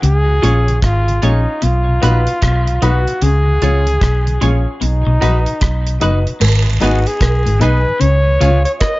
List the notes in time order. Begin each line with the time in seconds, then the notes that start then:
0.02 C#2 C#3 G#4, closed hi-hat
0.28 C#3
0.42 A#1 A#2 G#3 C#4 F4 G#4 C#5, closed hi-hat
0.68 C#3, closed hi-hat
0.82 G#1 G#2 F4, kick, cross-stick, closed hi-hat
1.08 C#3, closed hi-hat
1.22 A#1 A#2 G#3 C#4 D#4 F4 G#4 C#5, closed hi-hat
1.62 B1 B2 F4, closed hi-hat
1.88 B2
2.01 A#1 A#2 F#3 B3 D#4 F#4 B4, closed hi-hat
2.27 B2, closed hi-hat
2.42 B1 B2, kick, cross-stick, closed hi-hat
2.67 B2, closed hi-hat
2.81 B1 B2 F#3 B3 D#4 F#4 B4, closed hi-hat
3.07 B2, closed hi-hat
3.22 C#2 C#3 G#4, closed hi-hat
3.47 C#3
3.62 C#2 C#3 F3 G#3 C#4 F4 G#4 C#5, closed hi-hat
3.87 C#3, closed hi-hat
4.01 B1 B2, kick, cross-stick, closed hi-hat
4.27 C#3, closed hi-hat
4.41 A#1 A#2 F3 G#3 C#4 F4 G#4 C#5, closed hi-hat
4.81 B1 B2 D#4, closed hi-hat
5.06 B1 B2
5.21 A#1 A#2 F#3 B3 D#4 F#4 B4 D#5, closed hi-hat
5.46 B2, closed hi-hat
5.61 B1 B2, kick, cross-stick, closed hi-hat
5.87 B2, closed hi-hat
6.00 F#1 F#2 F#3 B3 D#4 F#4 B4 D#5, closed hi-hat
6.27 B2, closed hi-hat
6.40 G#1 G#2, crash, cowbell, vibraslap
6.67 G#2 D#3
6.80 G#1 G#2 G#3 B3 D#4 F#4 G#4 B4 D#5, closed hi-hat
7.07 G#4, closed hi-hat
7.21 B1 B2, kick, cross-stick, closed hi-hat, cowbell
7.46 G#1 G#2 D#3, closed hi-hat
7.60 B1 B2 G#3 B3 D#4 G#4 B4 D#5, closed hi-hat
7.88 G#2 D#3
8.00 C#2 C#3 C#5, closed hi-hat
8.27 C#3
8.40 C#2 C#3 G#3 C#4 F4 G#4 C#5 F5, closed hi-hat
8.65 C#5, closed hi-hat
8.80 D#5, kick, cross-stick, closed hi-hat, cowbell